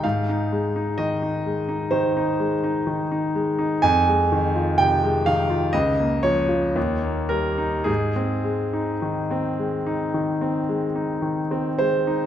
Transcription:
<<
  \new Staff \with { instrumentName = "Grand piano" } { \time 4/4 \key aes \major \tempo 4 = 61 f''4 ees''4 c''4. r8 | aes''4 g''8 f''8 ees''8 des''4 bes'8 | aes'2.~ aes'8 c''8 | }
  \new Staff \with { instrumentName = "Grand piano" } { \clef bass \time 4/4 \key aes \major aes,16 ees'16 aes16 ees'16 ees16 ees'16 aes16 ees'16 ees16 ees'16 aes16 ees'16 ees16 ees'16 aes16 ees'16 | f,16 aes16 ees16 f'16 c16 aes16 ees16 f'16 des,16 bes16 f16 f'16 ees,16 bes16 g16 ees'16 | aes,16 c'16 aes16 ees'16 ees16 c'16 aes16 ees'16 ees16 c'16 aes16 ees'16 ees16 c'16 aes16 ees'16 | }
>>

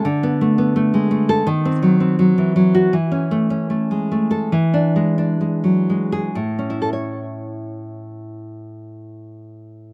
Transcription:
\new Staff \with { instrumentName = "Nylon-string guitar" } { \time 4/4 \key a \major \tempo 4 = 71 << { r4. r16 a'16 r4. r16 fis'16 | r4. r16 a'16 r4. r16 gis'16 | <a, cis' e' a' cis''>1 | } \\ { d16 b16 a16 b16 a16 gis16 a8 dis16 bis16 fis16 bis16 fis16 e16 fis8 | e16 cis'16 a16 cis'16 a16 gis16 a8 e16 d'16 gis16 d'16 gis16 fis16 gis8 | r1 | } >> }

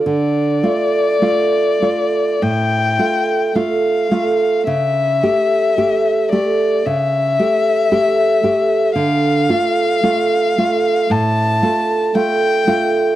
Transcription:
<<
  \new Staff \with { instrumentName = "Violin" } { \time 4/4 \key d \minor \tempo 4 = 55 d''2 g''4 f''4 | e''4. d''8 e''2 | f''2 a''4 g''4 | }
  \new Staff \with { instrumentName = "Nylon-string guitar" } { \time 4/4 \key d \minor d8 <a f'>8 <a f'>8 <a f'>8 a,8 <a f'>8 <a f'>8 <a f'>8 | cis8 <a g'>8 <a g'>8 <a g'>8 cis8 <a g'>8 <a g'>8 <a g'>8 | d8 <a f'>8 <a f'>8 <a f'>8 a,8 <a f'>8 <a f'>8 <a f'>8 | }
>>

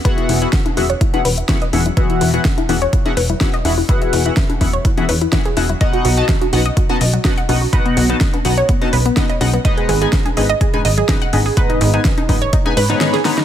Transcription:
<<
  \new Staff \with { instrumentName = "Analog polysynth" } { \time 4/4 \key e \major \tempo 4 = 125 <e b fis' gis' e'' fis''>8. <e b fis' gis' e'' fis''>16 r8 <e b fis' gis' e'' fis''>16 r8 <e b fis' gis' e'' fis''>16 r8 <e b fis' gis' e'' fis''>16 r16 <e b fis' gis' e'' fis''>16 r16 | <e b fis' gis' e'' fis''>8. <e b fis' gis' e'' fis''>16 r8 <e b fis' gis' e'' fis''>16 r8 <e b fis' gis' e'' fis''>16 r8 <e b fis' gis' e'' fis''>16 r16 <e b fis' gis' e'' fis''>16 r16 | <e b fis' gis' e'' fis''>8. <e b fis' gis' e'' fis''>16 r8 <e b fis' gis' e'' fis''>16 r8 <e b fis' gis' e'' fis''>16 r8 <e b fis' gis' e'' fis''>16 r16 <b, b fis' gis' e'' fis''>16 r16 | <b, b dis' fis' dis'' fis''>8. <b, b dis' fis' dis'' a''>16 r8 <b, b dis' fis' dis'' fis''>16 r8 <b, b dis' fis' dis'' a''>16 r8 <b, b dis' fis' dis'' fis''>16 r16 <b, b dis' fis' dis'' fis''>16 r16 |
<b, b dis' fis' dis'' fis''>8. <b, b dis' fis' dis'' a''>16 r8 <b, b dis' fis' dis'' fis''>16 r8 <b, b dis' fis' dis'' a''>16 r8 <b, b dis' fis' dis'' fis''>16 r16 <gis, b dis' fis' dis'' fis''>16 r16 | <gis, gis b dis' b' dis''>8. <gis, gis b dis' b' gis''>16 r8 <gis, gis b dis' b' dis''>16 r8 <gis, gis b dis' b' gis''>16 r8 <gis, gis b dis' b' dis''>16 r16 <gis, gis b dis' b' dis''>16 r16 | <gis, gis b dis' b' dis''>8. <gis, gis b dis' b' gis''>16 r8 <gis, gis b dis' b' dis''>16 r8 <gis, gis b dis' b' gis''>16 r16 <gis, gis b dis' b' cis''>16 <gis, gis b dis' b' cis''>16 r16 <gis b dis' b' cis''>16 r16 | }
  \new Staff \with { instrumentName = "Synth pluck" } { \time 4/4 \key e \major b'16 e'16 e'16 e'16 r16 e'16 e'16 cis''16 e'16 e'16 b'16 e'16 e'16 dis''16 e'16 e'16 | b'16 e'16 e'16 e'16 r16 e'16 e'16 cis''16 e'16 e'16 b'16 e'16 e'16 dis''16 e'16 e'16 | b'16 e'16 e'16 e'16 r16 e'16 e'16 cis''16 e'16 e'16 b'16 e'16 e'16 gis'16 e'16 e'16 | dis''16 fis'16 fis'16 fis'16 r16 fis'16 fis'16 dis''16 fis'16 fis'16 dis''16 fis'16 fis'16 fis''16 fis'16 fis'16 |
b'16 b16 b16 b16 r16 b16 b16 cis''16 b16 b16 b'16 b16 b16 dis''16 b16 b16 | dis''16 gis'16 gis'16 gis'16 r16 gis'16 gis'16 dis''16 gis'16 gis'16 dis''16 gis'16 gis'16 fis''16 gis'16 gis'16 | b'16 dis'16 dis'16 dis'16 r16 dis'16 dis'16 cis''16 dis'16 dis'16 b'16 dis'16 dis'16 gis'16 dis'16 dis'16 | }
  \new Staff \with { instrumentName = "Analog synth bass" } { \clef bass \time 4/4 \key e \major r8 e,,8 r8 e,,8 r8 e,,8 r8 e,,8 | r8 e,,8 r8 e,,8 r8 e,,8 r8 e,,8 | r8 e,,8 r8 e,,8 r8 e,8 r8 e,,8 | r8 b,,8 r8 b,,8 r8 b,,8 r8 b,,8 |
r8 b,,8 r8 b,,8 r8 b,,8 r8 b,,8 | r8 gis,,8 r8 gis,,8 r8 gis,,8 r8 gis,,8 | r8 gis,,8 r8 gis,,8 r8 gis,8 r4 | }
  \new DrumStaff \with { instrumentName = "Drums" } \drummode { \time 4/4 <hh bd>16 hh16 hho16 hh16 <hh bd sn>16 <cgho hh>16 <cgho cgl hho>16 hh16 <hh bd>16 <cgho hh>16 hho16 hh16 <hh bd sn>16 hh16 <cgho hho>16 <cgl hh>16 | <hh bd>16 hh16 hho16 hh16 <hh bd sn>16 <cgho hh>16 <cgho hho>16 hh16 <hh bd>16 <cgho hh>16 hho16 <cgl hh>16 <hh bd sn>16 hh16 <cgho hho>8 | <hh bd>16 hh16 hho16 hh16 <hh bd sn>16 <cgho hh>16 <cgho cgl hho bd>16 hh16 <hh bd>16 <cgho hh>16 hho16 hh16 <hh bd sn>16 hh16 <cgho hho>16 <cgl hh>16 | <hh bd>16 hh16 hho16 hh16 <hh bd sn>16 <cgho hh>16 <cgho hho>16 hh16 <hh bd>16 <cgho hh>16 hho16 <cgl hh>16 <hh bd sn>16 hh16 <cgho hho>8 |
<hh bd>16 hh16 hho16 hh16 <hh bd sn>16 <cgho hh>16 <cgho cgl hho>16 hh16 <hh bd>16 <cgho hh>16 hho16 hh16 <hh bd sn>16 hh16 <cgho hho>16 <cgl hh>16 | <hh bd>16 hh16 hho16 hh16 <hh bd sn>16 <cgho hh>16 <cgho hho>16 hh16 <hh bd>16 <cgho hh>16 hho16 <cgl hh>16 <hh bd sn>16 hh16 <cgho hho>8 | <hh bd>16 hh16 hho16 hh16 <hh bd sn>16 <cgho hh>16 <cgho cgl hho bd>16 hh16 <hh bd>16 <cgho hh>16 hho16 <hh sn>16 <hh sn>16 <hh sn>16 <cgho hho sn>16 <cgl hh sn>16 | }
>>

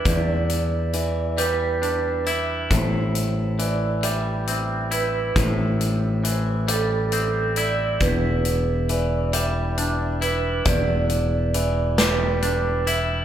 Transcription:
<<
  \new Staff \with { instrumentName = "Vibraphone" } { \time 6/8 \key e \minor \tempo 4. = 45 d''4 d''8 b'4 e''8 | c''4 d''8 e''4 b'8 | c''4 c''8 a'4 d''8 | b'4 d''8 e''4 b'8 |
d''4 d''8 b'4 e''8 | }
  \new Staff \with { instrumentName = "Clean electric guitar" } { \clef bass \time 6/8 \key e \minor <e, e g d' e'>4 e8 g8 d'8 e'8 | a,4 e8 g8 c'8 e'8 | a,4 e8 g8 c'8 e'8 | e,4 e8 g8 d'8 e'8 |
e,4 e8 g8 d'8 e'8 | }
  \new Staff \with { instrumentName = "Fingered electric bass" } { \clef bass \time 6/8 \key e \minor e,2. | a,,2. | a,,2. | e,,2. |
e,,2. | }
  \new DrumStaff \with { instrumentName = "Drums" } \drummode { \time 6/8 <hh bd>8 hh8 hh8 hh8 hh8 hh8 | <hh bd>8 hh8 hh8 hh8 hh8 hh8 | <hh bd>8 hh8 hh8 hh8 hh8 hh8 | <hh bd>8 hh8 hh8 hh8 hh8 hh8 |
<hh bd>8 hh8 hh8 <hh sn>8 hh8 hh8 | }
>>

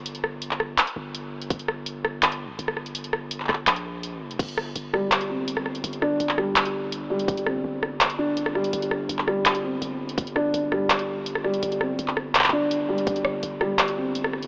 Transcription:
<<
  \new Staff \with { instrumentName = "Felt piano" } { \time 4/4 \key g \minor \tempo 4 = 166 r1 | r1 | r1 | r4. g4 c'8 r4 |
r8 d'8 r8 g8 r4. g8~ | g8 c'8 r4. d'8 r8 g8 | r4. g4 c'8 r4 | r8 d'8 r8 g8 r4. g8~ |
g8 c'8 r4. d'8 r8 g8 | r4. g4 c'8 r4 | }
  \new Staff \with { instrumentName = "808-style bass" } { \clef bass \time 4/4 \key g \minor g,,2 r8 g,,4. | g,,2 g,,4 g,,4~ | g,,2 bes,,2 | g,,4 g,,2. |
g,,4 g,,2. | g,,4 g,,2. | g,,4 g,,2 g,,4 | g,,4 g,,2. |
g,,4 g,,2. | g,,4 g,,2. | }
  \new DrumStaff \with { instrumentName = "Drums" } \drummode { \time 4/4 hh16 hh16 ss8 hh16 hc16 ss8 <hc hh>16 hh8. hh8. hh16 | <hh bd>16 hh16 ss8 hh8 ss8 <hc hh>16 hh8. hh16 ss16 ss16 hh16 | hh16 hh16 ss8 hh16 hc32 hc32 <hc bd ss>32 hc16. <hc hh>16 hh8. hh8. hh16 | <cymc hh bd>16 hh16 ss8 hh8 ss8 <hc hh>16 hh8. hh16 ss16 ss16 hh16 |
hh16 hh16 ss8 hh16 hc16 ss8 <hc hh>16 hh8. hh8. hh16 | <hh bd>16 hh16 ss8 r8 ss8 <hc hh>16 hh8. hh16 ss16 ss16 hh16 | hh16 hh16 ss8 hh16 hc16 ss8 <hc hh>16 hh8. hh8. hh16 | <hh bd>16 hh16 ss8 hh8 ss8 <hc hh>16 hh8. hh16 ss16 ss16 hh16 |
hh16 hh16 ss8 hh16 hc16 ss8 <hc hh>32 hc32 <hc hh>32 hc8 r32 hh8. hh16 | <hh bd>16 hh16 ss8 hh8 ss8 <hc hh>16 hh8. hh16 ss16 ss16 hh16 | }
>>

